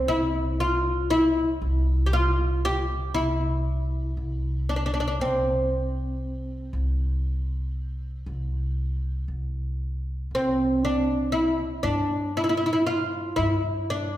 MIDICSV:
0, 0, Header, 1, 3, 480
1, 0, Start_track
1, 0, Tempo, 1022147
1, 37, Time_signature, 10, 3, 24, 8
1, 6656, End_track
2, 0, Start_track
2, 0, Title_t, "Oud"
2, 0, Program_c, 0, 24
2, 0, Note_on_c, 0, 60, 86
2, 39, Note_on_c, 0, 64, 90
2, 48, Note_off_c, 0, 60, 0
2, 281, Note_off_c, 0, 64, 0
2, 283, Note_on_c, 0, 65, 83
2, 517, Note_off_c, 0, 65, 0
2, 519, Note_on_c, 0, 64, 94
2, 967, Note_off_c, 0, 64, 0
2, 969, Note_on_c, 0, 67, 68
2, 999, Note_off_c, 0, 67, 0
2, 1001, Note_on_c, 0, 65, 93
2, 1243, Note_off_c, 0, 65, 0
2, 1244, Note_on_c, 0, 67, 97
2, 1475, Note_off_c, 0, 67, 0
2, 1477, Note_on_c, 0, 64, 90
2, 2202, Note_off_c, 0, 64, 0
2, 2204, Note_on_c, 0, 62, 72
2, 2231, Note_off_c, 0, 62, 0
2, 2236, Note_on_c, 0, 62, 56
2, 2271, Note_off_c, 0, 62, 0
2, 2282, Note_on_c, 0, 62, 65
2, 2311, Note_off_c, 0, 62, 0
2, 2318, Note_on_c, 0, 62, 60
2, 2343, Note_off_c, 0, 62, 0
2, 2349, Note_on_c, 0, 62, 66
2, 2378, Note_off_c, 0, 62, 0
2, 2384, Note_on_c, 0, 62, 60
2, 2415, Note_off_c, 0, 62, 0
2, 2448, Note_on_c, 0, 60, 77
2, 4344, Note_off_c, 0, 60, 0
2, 4860, Note_on_c, 0, 60, 81
2, 5093, Note_on_c, 0, 62, 81
2, 5096, Note_off_c, 0, 60, 0
2, 5315, Note_off_c, 0, 62, 0
2, 5317, Note_on_c, 0, 64, 84
2, 5554, Note_off_c, 0, 64, 0
2, 5556, Note_on_c, 0, 62, 91
2, 5780, Note_off_c, 0, 62, 0
2, 5809, Note_on_c, 0, 64, 81
2, 5836, Note_off_c, 0, 64, 0
2, 5841, Note_on_c, 0, 64, 65
2, 5861, Note_off_c, 0, 64, 0
2, 5866, Note_on_c, 0, 64, 76
2, 5899, Note_off_c, 0, 64, 0
2, 5904, Note_on_c, 0, 64, 61
2, 5939, Note_off_c, 0, 64, 0
2, 5945, Note_on_c, 0, 64, 71
2, 5971, Note_off_c, 0, 64, 0
2, 5977, Note_on_c, 0, 64, 67
2, 6013, Note_off_c, 0, 64, 0
2, 6041, Note_on_c, 0, 65, 83
2, 6273, Note_off_c, 0, 65, 0
2, 6275, Note_on_c, 0, 64, 86
2, 6524, Note_off_c, 0, 64, 0
2, 6528, Note_on_c, 0, 62, 86
2, 6656, Note_off_c, 0, 62, 0
2, 6656, End_track
3, 0, Start_track
3, 0, Title_t, "Upright bass"
3, 0, Program_c, 1, 32
3, 39, Note_on_c, 1, 36, 86
3, 739, Note_off_c, 1, 36, 0
3, 759, Note_on_c, 1, 36, 98
3, 1459, Note_off_c, 1, 36, 0
3, 1483, Note_on_c, 1, 36, 98
3, 1941, Note_off_c, 1, 36, 0
3, 1958, Note_on_c, 1, 36, 85
3, 2419, Note_off_c, 1, 36, 0
3, 2441, Note_on_c, 1, 36, 84
3, 3141, Note_off_c, 1, 36, 0
3, 3161, Note_on_c, 1, 36, 94
3, 3860, Note_off_c, 1, 36, 0
3, 3881, Note_on_c, 1, 36, 88
3, 4340, Note_off_c, 1, 36, 0
3, 4358, Note_on_c, 1, 36, 76
3, 4819, Note_off_c, 1, 36, 0
3, 4841, Note_on_c, 1, 36, 73
3, 5541, Note_off_c, 1, 36, 0
3, 5559, Note_on_c, 1, 43, 81
3, 6260, Note_off_c, 1, 43, 0
3, 6283, Note_on_c, 1, 43, 92
3, 6656, Note_off_c, 1, 43, 0
3, 6656, End_track
0, 0, End_of_file